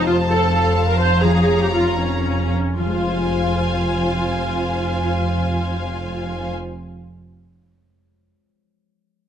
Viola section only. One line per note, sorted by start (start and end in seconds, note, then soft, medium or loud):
0.06 0.14 F4 medium
0.29 0.51 A4 medium
0.52 0.87 A4 soft
0.88 0.99 A#4 medium
1.00 1.23 C5 medium
1.23 1.60 G#4 medium
1.62 1.73 G4 soft
1.74 1.98 F4 soft
1.99 2.78 C#4 soft
2.80 6.52 F4 soft